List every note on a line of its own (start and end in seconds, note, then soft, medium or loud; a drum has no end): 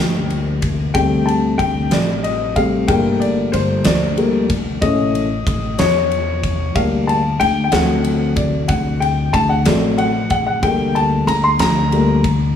0.00 0.91 D2 medium
0.00 0.91 G3 medium
0.00 0.91 A#3 soft
0.00 0.91 D4 medium
0.00 0.26 G5 medium
0.30 ride soft
0.62 kick medium
0.62 ride medium
0.94 1.56 D2 loud
0.94 2.55 G3 medium
0.94 2.55 A3 soft
0.94 2.56 C4 medium
0.94 1.28 G5 medium
0.94 kick loud
0.94 ride medium
1.26 1.56 A5 medium
1.26 ride soft
1.58 1.90 D2 loud
1.58 1.92 G5 medium
1.58 kick medium
1.58 ride medium
1.91 2.84 A1 medium
1.91 2.25 D5 medium
1.91 snare loud
1.91 ride medium
2.23 2.54 D#5 medium
2.23 ride soft
2.56 2.85 G3 medium
2.56 2.86 A3 soft
2.56 2.86 C4 medium
2.56 2.89 F5 medium
2.56 kick medium
2.56 ride medium
2.88 3.49 G1 medium
2.88 4.16 G3 soft
2.88 4.16 A3 soft
2.88 4.17 A#3 medium
2.88 3.21 G5 medium
2.88 kick loud
2.88 ride medium
3.20 3.54 D5 medium
3.20 ride soft
3.52 3.84 G1 loud
3.52 3.86 C5 medium
3.52 ride medium
3.84 4.78 D2 loud
3.84 4.54 D5 medium
3.84 snare loud
3.84 ride medium
4.17 4.47 G3 medium
4.17 4.47 A3 soft
4.17 4.47 A#3 medium
4.17 ride soft
4.50 kick medium
4.50 ride medium
4.81 5.43 A1 loud
4.81 5.25 E3 medium
4.81 5.25 A3 soft
4.81 5.25 C#4 medium
4.81 5.81 D#5 medium
4.81 kick loud
4.81 ride medium
5.15 ride soft
5.47 5.77 A1 medium
5.47 kick loud
5.47 ride medium
5.79 6.72 E2 loud
5.79 6.78 C#5 medium
5.79 snare loud
5.79 ride medium
6.12 ride soft
6.43 kick medium
6.43 ride medium
6.75 7.36 D2 loud
6.75 7.18 G3 soft
6.75 7.19 A#3 soft
6.75 7.19 D4 medium
6.75 7.09 F5 medium
6.75 kick loud
6.75 ride medium
7.07 7.41 A5 medium
7.07 ride soft
7.40 7.71 D2 loud
7.40 7.62 G5 loud
7.40 ride medium
7.64 7.72 G5 medium
7.72 8.65 D2 loud
7.72 9.62 F#3 medium
7.72 9.62 A3 soft
7.72 9.63 C4 medium
7.72 8.33 F#5 medium
7.72 snare loud
7.72 ride medium
8.04 ride soft
8.36 8.70 D5 medium
8.36 kick medium
8.36 ride medium
8.68 9.30 D2 loud
8.68 9.02 F#5 medium
8.68 kick loud
8.68 ride medium
9.00 9.34 G5 medium
9.00 ride soft
9.33 9.64 D2 loud
9.33 9.50 A5 loud
9.33 kick medium
9.33 ride medium
9.49 9.65 F#5 medium
9.65 10.59 A1 loud
9.65 10.09 F#3 medium
9.65 10.09 A3 medium
9.65 10.09 C4 medium
9.65 9.99 D5 medium
9.65 snare loud
9.65 ride medium
9.98 10.29 F#5 medium
9.98 ride soft
10.30 10.45 F#5 medium
10.30 kick medium
10.30 ride soft
10.46 10.63 F#5 medium
10.63 11.23 D2 loud
10.63 11.56 G3 soft
10.63 11.56 A3 soft
10.63 11.57 A#3 medium
10.63 10.96 G5 loud
10.63 kick loud
10.63 ride medium
10.95 11.28 A5 medium
10.95 ride soft
11.27 11.58 D2 loud
11.27 11.44 A#5 loud
11.27 ride medium
11.44 11.60 C6 loud
11.59 12.52 D2 loud
11.59 12.29 A#5 loud
11.59 snare loud
11.59 ride medium
11.92 12.21 G3 soft
11.92 12.22 A3 soft
11.92 12.22 A#3 medium
11.92 ride soft
12.24 kick medium
12.24 ride medium